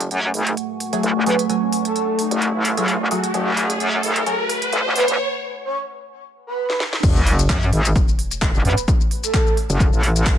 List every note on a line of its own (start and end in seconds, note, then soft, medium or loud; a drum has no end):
0.00 0.90 F#3 medium
0.00 0.90 A3 medium
0.00 5.15 A3 medium
0.00 0.90 G#4 medium
0.00 5.15 F#5 medium
0.00 5.15 G#5 medium
0.00 5.15 C#6 medium
0.00 closed hi-hat medium
0.00 riser medium
0.11 0.32 F#2 medium
0.11 closed hi-hat medium
0.34 0.56 G#1 medium
0.34 open hi-hat loud
0.47 closed hi-hat medium
0.57 closed hi-hat medium
0.80 open hi-hat loud
0.93 1.12 F#3 medium
0.93 1.12 A3 medium
0.93 1.12 G#4 loud
0.93 closed hi-hat medium
1.03 1.14 A1 medium
1.03 closed hi-hat soft
1.16 1.25 F#1 medium
1.26 1.37 F#2 medium
1.26 1.46 F#3 medium
1.26 1.46 A3 medium
1.26 1.46 G#4 medium
1.26 1.39 B4 medium
1.26 open hi-hat loud
1.39 closed hi-hat medium
1.49 2.74 F#3 medium
1.49 2.74 A3 medium
1.49 2.74 G#5 medium
1.49 closed hi-hat medium
1.73 open hi-hat loud
1.85 2.19 A4 medium
1.85 closed hi-hat medium
1.96 closed hi-hat soft
2.19 open hi-hat loud
2.31 2.52 F#1 loud
2.31 closed hi-hat medium
2.42 closed hi-hat medium
2.54 2.99 A1 loud
2.65 open hi-hat loud
2.77 2.96 F#3 medium
2.77 2.96 A3 medium
2.77 2.96 G#4 loud
2.77 closed hi-hat medium
2.88 open hi-hat medium
3.00 3.09 F#1 medium
3.11 3.31 F#3 medium
3.11 3.31 A3 medium
3.11 3.31 G#4 medium
3.11 open hi-hat loud
3.24 closed hi-hat medium
3.34 3.79 F#1 loud
3.34 4.25 F#3 medium
3.34 4.25 A3 medium
3.34 4.25 G#4 medium
3.34 closed hi-hat medium
3.57 open hi-hat loud
3.70 closed hi-hat medium
3.80 4.02 F#2 loud
3.80 closed hi-hat soft
4.03 4.25 G#1 loud
4.03 open hi-hat loud
4.16 closed hi-hat medium
4.26 5.17 F#3 medium
4.26 5.17 A3 medium
4.26 5.17 G#4 medium
4.26 closed hi-hat medium
4.49 open hi-hat loud
4.62 closed hi-hat medium
4.72 4.83 A1 loud
4.72 closed hi-hat soft
4.85 4.94 F#1 medium
4.96 5.06 F#2 loud
4.96 5.08 B4 medium
4.96 open hi-hat loud
5.08 5.19 F#1 medium
5.08 closed hi-hat medium
5.65 5.77 C#5 medium
6.47 6.80 B4 medium
6.70 snare medium
6.80 snare medium
6.93 snare medium
7.03 7.48 F#1 loud
7.03 10.38 A3 medium
7.03 10.38 F#4 medium
7.03 10.38 C#5 medium
7.03 10.38 G#5 medium
7.03 kick loud
7.03 closed hi-hat medium
7.03 crash loud
7.03 sub drop medium
7.03 shaker medium
7.16 shaker soft
7.26 open hi-hat loud
7.39 closed hi-hat medium
7.39 shaker medium
7.49 7.71 F#2 loud
7.49 kick loud
7.49 clap loud
7.49 closed hi-hat medium
7.49 shaker medium
7.62 shaker soft
7.73 7.94 G#1 loud
7.73 open hi-hat loud
7.85 closed hi-hat medium
7.85 shaker medium
7.96 kick loud
7.96 closed hi-hat medium
7.96 shaker medium
8.08 shaker soft
8.19 open hi-hat loud
8.31 closed hi-hat medium
8.31 shaker medium
8.42 8.52 A1 loud
8.42 kick loud
8.42 clap loud
8.42 closed hi-hat medium
8.42 shaker medium
8.54 8.63 F#1 medium
8.54 shaker soft
8.65 8.75 F#2 loud
8.65 8.77 B4 medium
8.65 open hi-hat loud
8.78 closed hi-hat medium
8.78 shaker medium
8.88 kick loud
8.88 closed hi-hat medium
8.88 shaker medium
9.01 shaker soft
9.11 open hi-hat loud
9.24 9.57 A4 medium
9.24 closed hi-hat medium
9.24 shaker medium
9.34 kick loud
9.34 clap loud
9.34 closed hi-hat medium
9.34 shaker medium
9.47 shaker soft
9.57 open hi-hat loud
9.70 9.91 F#1 loud
9.70 closed hi-hat medium
9.70 shaker medium
9.80 kick loud
9.80 closed hi-hat medium
9.80 shaker medium
9.93 10.37 A1 loud
9.93 shaker soft
10.03 open hi-hat loud
10.16 closed hi-hat medium
10.16 shaker medium
10.26 kick loud
10.26 clap loud
10.26 closed hi-hat medium
10.26 shaker medium